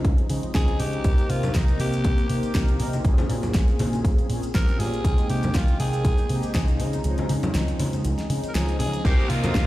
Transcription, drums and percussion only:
0.05 kick, closed hi-hat
0.18 closed hi-hat
0.30 open hi-hat
0.43 closed hi-hat
0.55 kick, snare, closed hi-hat
0.68 closed hi-hat
0.80 open hi-hat
0.93 closed hi-hat
1.04 kick, closed hi-hat, maracas
1.18 closed hi-hat, maracas
1.30 open hi-hat
1.43 closed hi-hat, low conga, maracas
1.54 kick, snare, closed hi-hat, maracas
1.68 closed hi-hat, maracas
1.80 open hi-hat
1.93 closed hi-hat, maracas
2.04 kick, closed hi-hat, maracas
2.18 closed hi-hat, maracas
2.29 open hi-hat
2.43 closed hi-hat, maracas
2.55 kick, snare, closed hi-hat, maracas
2.68 closed hi-hat, maracas
2.80 open hi-hat
2.93 closed hi-hat, high conga, maracas
3.05 kick, closed hi-hat, maracas
3.18 closed hi-hat, high conga, maracas
3.30 open hi-hat
3.43 closed hi-hat, low conga, maracas
3.54 kick, snare, closed hi-hat, maracas
3.68 closed hi-hat, maracas
3.79 open hi-hat, high conga
3.93 closed hi-hat, high conga, maracas
4.05 kick, closed hi-hat, maracas
4.18 closed hi-hat, maracas
4.30 open hi-hat
4.43 closed hi-hat, maracas
4.54 kick, snare, closed hi-hat, maracas
4.68 closed hi-hat, maracas
4.80 open hi-hat
4.93 closed hi-hat, maracas
5.05 kick, closed hi-hat, maracas
5.18 closed hi-hat, maracas
5.30 open hi-hat
5.43 closed hi-hat, low conga, maracas
5.53 kick, snare, closed hi-hat, maracas
5.68 closed hi-hat, maracas
5.80 open hi-hat
5.93 closed hi-hat, maracas
6.05 kick, closed hi-hat, maracas
6.18 closed hi-hat, maracas
6.29 open hi-hat
6.43 closed hi-hat, maracas
6.54 kick, snare, closed hi-hat, maracas
6.68 closed hi-hat, maracas
6.80 open hi-hat
6.93 closed hi-hat, high conga, maracas
7.04 closed hi-hat, maracas
7.18 closed hi-hat, high conga, maracas
7.29 open hi-hat
7.43 closed hi-hat, low conga, maracas
7.54 snare, closed hi-hat, maracas
7.68 closed hi-hat, maracas
7.79 open hi-hat, high conga
7.93 closed hi-hat, high conga, maracas
8.05 closed hi-hat, maracas
8.18 snare, closed hi-hat, maracas
8.30 open hi-hat
8.44 closed hi-hat, maracas
8.55 snare, closed hi-hat, maracas
8.69 closed hi-hat, maracas
8.80 open hi-hat
8.93 closed hi-hat, maracas
9.05 kick, closed hi-hat, maracas
9.20 maracas
9.30 open hi-hat
9.44 closed hi-hat, low conga, maracas
9.55 kick, snare, closed hi-hat, maracas

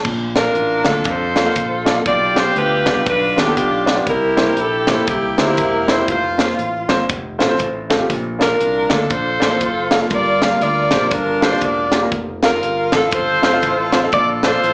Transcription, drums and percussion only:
0.04 kick, crash
0.36 snare, closed hi-hat
0.55 closed hi-hat
0.84 kick, snare, closed hi-hat
1.04 kick, closed hi-hat
1.36 snare, closed hi-hat
1.56 kick, closed hi-hat
1.86 snare, closed hi-hat
2.06 kick, closed hi-hat
2.36 snare, closed hi-hat
2.56 closed hi-hat
2.86 kick, snare, closed hi-hat
3.06 kick, closed hi-hat
3.38 snare, closed hi-hat
3.57 kick, closed hi-hat
3.87 snare, closed hi-hat
4.07 kick, closed hi-hat
4.37 snare, closed hi-hat
4.57 closed hi-hat
4.87 kick, snare, closed hi-hat
5.07 kick, closed hi-hat
5.38 snare, closed hi-hat
5.57 kick, closed hi-hat
5.88 snare, closed hi-hat
6.08 kick, closed hi-hat
6.39 snare, closed hi-hat
6.59 closed hi-hat
6.89 kick, snare, closed hi-hat
7.09 kick, closed hi-hat
7.40 snare, closed hi-hat
7.59 kick, closed hi-hat
7.90 kick, snare, closed hi-hat
8.10 kick, closed hi-hat
8.41 snare, closed hi-hat
8.61 closed hi-hat
8.90 kick, snare, closed hi-hat
9.10 kick, closed hi-hat
9.42 snare, closed hi-hat
9.61 kick, closed hi-hat
9.91 snare, closed hi-hat
10.10 kick, closed hi-hat
10.42 snare, closed hi-hat
10.61 closed hi-hat
10.91 kick, snare, closed hi-hat
11.11 kick, closed hi-hat
11.42 snare, closed hi-hat
11.61 kick, closed hi-hat
11.92 snare, closed hi-hat
12.12 kick, closed hi-hat
12.43 snare, closed hi-hat
12.63 closed hi-hat
12.92 kick, snare, closed hi-hat
13.11 kick, closed hi-hat
13.43 snare, closed hi-hat
13.63 kick, closed hi-hat
13.92 snare, closed hi-hat
14.12 kick, closed hi-hat
14.43 snare, closed hi-hat
14.64 closed hi-hat

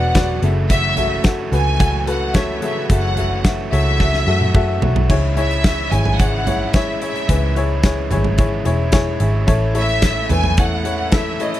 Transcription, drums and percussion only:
0.15 kick, snare, closed hi-hat
0.43 closed hi-hat
0.70 kick, closed hi-hat
0.97 closed hi-hat, floor tom
1.24 kick, snare, closed hi-hat
1.53 closed hi-hat
1.80 kick, closed hi-hat
2.07 closed hi-hat
2.34 kick, snare, closed hi-hat
2.62 closed hi-hat
2.90 kick, closed hi-hat
3.17 closed hi-hat, floor tom
3.44 kick, snare, closed hi-hat
3.73 closed hi-hat
4.00 kick, snare
4.14 snare
4.41 high tom
4.55 kick, mid tom
4.82 floor tom
4.96 floor tom
5.10 kick, crash
5.37 closed hi-hat
5.51 closed hi-hat
5.64 kick, snare, closed hi-hat
5.92 closed hi-hat, floor tom
6.05 floor tom
6.19 kick, closed hi-hat
6.47 closed hi-hat, floor tom
6.74 kick, snare, closed hi-hat
7.02 closed hi-hat
7.16 closed hi-hat
7.29 kick, closed hi-hat
7.56 closed hi-hat
7.83 kick, snare, closed hi-hat
8.11 closed hi-hat, floor tom
8.24 floor tom
8.38 kick, closed hi-hat
8.65 closed hi-hat
8.92 kick, snare, closed hi-hat
9.20 closed hi-hat
9.48 kick, closed hi-hat
9.75 closed hi-hat
9.89 closed hi-hat
10.02 kick, snare, closed hi-hat
10.29 closed hi-hat, floor tom
10.44 floor tom
10.57 kick, closed hi-hat
10.85 closed hi-hat
11.12 kick, snare, closed hi-hat
11.40 closed hi-hat
11.54 closed hi-hat

